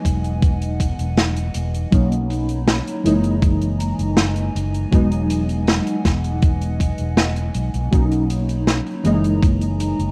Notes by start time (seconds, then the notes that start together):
Already playing: E3 F#3 G#3 B3 D#4 D#5 F#5 G#5
0.05 E1, kick, closed hi-hat
0.24 closed hi-hat
0.42 kick, closed hi-hat
0.62 closed hi-hat
0.80 kick, closed hi-hat
0.99 E1, closed hi-hat
1.17 snare, closed hi-hat
1.36 closed hi-hat
1.54 E1, closed hi-hat
1.74 closed hi-hat
1.91 B1 F#3 A#3 C#4 D#4 C#5 A#5 B5, kick, closed hi-hat
2.12 closed hi-hat
2.30 closed hi-hat
2.49 closed hi-hat
2.68 snare, closed hi-hat
2.87 closed hi-hat
3.03 F#1 E3 G#3 A#3 D#4 D#5 G#5, closed hi-hat
3.24 closed hi-hat
3.42 kick, closed hi-hat
3.62 closed hi-hat
3.80 closed hi-hat
3.99 F#1, closed hi-hat
4.17 snare, closed hi-hat
4.36 closed hi-hat
4.55 F#1, closed hi-hat
4.74 closed hi-hat
4.91 E1 F#3 G#3 B3 D#4 D#5 F#5, kick, closed hi-hat
5.11 closed hi-hat
5.30 closed hi-hat
5.49 closed hi-hat
5.67 snare, closed hi-hat
5.87 closed hi-hat
6.05 E1, kick, snare, closed hi-hat
6.24 closed hi-hat
6.42 kick, closed hi-hat
6.61 closed hi-hat
6.80 kick, closed hi-hat
6.98 E1, closed hi-hat
7.17 snare, closed hi-hat
7.36 closed hi-hat
7.54 B1, closed hi-hat
7.74 B1, closed hi-hat
7.91 B1 F#3 A#3 C#4 D#4 C#5 A#5 B5, kick, closed hi-hat
8.11 closed hi-hat
8.30 closed hi-hat
8.49 closed hi-hat
8.67 snare, closed hi-hat
8.86 closed hi-hat
9.03 F#1 E3 G#3 A#3 D#4 D#5 G#5, closed hi-hat
9.24 closed hi-hat
9.43 kick, closed hi-hat
9.61 closed hi-hat
9.80 closed hi-hat
9.99 F#1, closed hi-hat